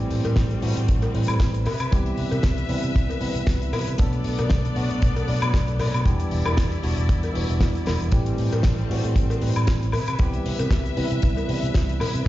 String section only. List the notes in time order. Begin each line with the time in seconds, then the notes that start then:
Already playing: G3 A3 C4
1.66 B4 E5
3.99 B3 A4 D5
6.06 E4 D5
8.13 G3 A3 C4
9.94 B4 E5